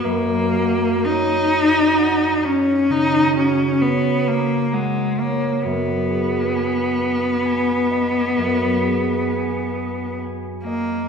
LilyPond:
<<
  \new Staff \with { instrumentName = "Harp" } { \time 12/8 \key fis \major \tempo 4. = 44 <fis, fis fis'>8 fis'8 cis''8 ais''8 fis''8 cis''8 cis8 fis'8 cis''8 ais''8 fis''8 cis''8 | fis,8 gis'8 gis''8 dis'''8 gis''8 dis''8 fis,8 gis'8 gis''8 dis'''8 gis''8 dis''8 | }
  \new Staff \with { instrumentName = "Cello" } { \time 12/8 \key fis \major ais4 dis'4. cis'8 dis'8 cis'8 b8 ais8 gis8 ais8 | b1~ b4 r8 ais8 | }
>>